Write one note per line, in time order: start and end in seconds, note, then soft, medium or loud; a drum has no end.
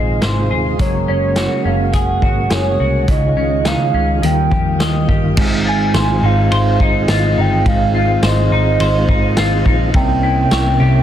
0.00 0.19 A#1 medium
0.00 0.80 G#2 medium
0.00 0.76 C3 medium
0.00 0.76 D#3 medium
0.00 4.19 G#3 soft
0.00 0.85 D#4 medium
0.00 0.77 F4 medium
0.00 0.50 G#4 medium
0.00 0.21 C5 medium
0.00 0.19 D#5 medium
0.22 0.51 G#1 medium
0.22 0.85 C5 medium
0.22 snare loud
0.22 closed hi-hat medium
0.51 0.77 D#1 medium
0.51 1.37 G#4 soft
0.79 1.05 F#1 medium
0.79 3.06 C#3 medium
0.79 3.08 F#3 medium
0.79 3.06 A#3 medium
0.79 3.06 F#4 medium
0.79 1.07 C#5 medium
0.79 kick loud
0.79 closed hi-hat medium
1.08 1.46 F#1 medium
1.08 1.65 C#4 medium
1.08 1.62 C#5 medium
1.36 2.22 F#4 medium
1.36 snare loud
1.36 closed hi-hat medium
1.65 1.91 F#1 medium
1.65 3.14 C#4 medium
1.65 1.95 F5 medium
1.93 2.19 F#1 medium
1.93 2.50 G#4 medium
1.93 2.54 F#5 loud
1.93 kick medium
1.93 closed hi-hat medium
2.22 2.48 G#1 medium
2.22 2.79 F#4 soft
2.22 kick medium
2.50 2.76 F#1 medium
2.50 3.14 G#4 medium
2.50 3.12 C#5 medium
2.50 snare loud
2.50 closed hi-hat medium
2.80 3.05 C2 medium
2.80 3.14 F#4 soft
3.08 3.33 C#2 loud
3.08 4.22 C#3 medium
3.08 4.21 D#3 medium
3.08 4.22 C#4 medium
3.08 4.22 F4 medium
3.08 3.69 D#5 medium
3.08 kick medium
3.08 closed hi-hat medium
3.36 3.74 C#2 medium
3.36 3.93 C#4 medium
3.65 4.51 D#4 medium
3.65 4.27 F5 loud
3.65 snare medium
3.65 closed hi-hat medium
3.94 4.19 C#2 medium
3.94 4.29 C#4 medium
4.22 4.48 D#2 medium
4.22 5.37 D#3 medium
4.22 5.35 D#3 medium
4.22 5.36 G3 medium
4.22 5.36 A#3 medium
4.22 5.35 F4 medium
4.22 5.10 G5 medium
4.22 closed hi-hat medium
4.51 4.79 F2 medium
4.51 5.07 G4 soft
4.51 kick medium
4.79 5.05 D#2 medium
4.79 5.69 D#5 medium
4.79 snare loud
4.79 closed hi-hat medium
5.09 5.34 G1 medium
5.09 5.43 G4 soft
5.09 kick medium
5.36 5.87 G#1 loud
5.36 7.64 G#2 medium
5.36 9.90 D#3 medium
5.36 9.90 G#3 medium
5.36 9.90 C4 medium
5.36 9.90 F4 medium
5.36 kick loud
5.36 crash loud
5.66 7.08 F4 medium
5.66 6.27 G#5 loud
5.94 6.19 G#1 medium
5.94 6.51 C5 medium
5.94 snare medium
5.94 ride medium
5.94 tambourine medium
6.23 6.48 G#1 loud
6.23 6.80 D#4 medium
6.23 6.85 F5 medium
6.52 6.77 G#1 loud
6.52 8.23 C5 medium
6.52 ride medium
6.80 7.05 G#1 loud
6.80 7.36 D#4 medium
6.80 7.10 D#5 medium
6.80 kick medium
7.08 7.34 G#1 medium
7.08 7.93 F4 medium
7.08 7.42 D#5 medium
7.08 snare loud
7.08 ride medium
7.08 tambourine medium
7.37 7.62 G1 medium
7.37 8.51 D#4 medium
7.37 7.69 G5 loud
7.66 8.16 G#1 loud
7.66 9.94 G#2 medium
7.66 7.95 F5 loud
7.66 kick loud
7.66 ride medium
7.95 9.37 F4 medium
7.95 8.28 F5 medium
8.23 8.48 G#1 loud
8.23 8.80 C5 medium
8.23 9.67 D#5 medium
8.23 snare loud
8.23 ride medium
8.23 tambourine medium
8.51 8.76 G#1 loud
8.51 9.08 D#4 medium
8.80 9.05 G#1 loud
8.80 10.51 C5 medium
8.80 ride medium
9.09 9.65 D#4 medium
9.09 kick medium
9.37 9.63 G#1 loud
9.37 10.00 F4 medium
9.37 snare loud
9.37 ride medium
9.37 tambourine medium
9.66 9.91 A#1 loud
9.66 10.00 D#4 medium
9.66 kick medium
9.94 10.45 C2 loud
9.94 11.03 C3 loud
9.94 11.03 C3 medium
9.94 11.03 A#3 medium
9.94 11.03 C#4 medium
9.94 11.03 E4 medium
9.94 11.03 G5 loud
9.94 kick loud
9.94 ride soft
10.23 11.03 E4 medium
10.51 10.77 C2 loud
10.51 11.03 C#5 medium
10.51 snare loud
10.51 ride medium
10.51 tambourine medium
10.80 11.03 C2 loud
10.80 11.03 G4 medium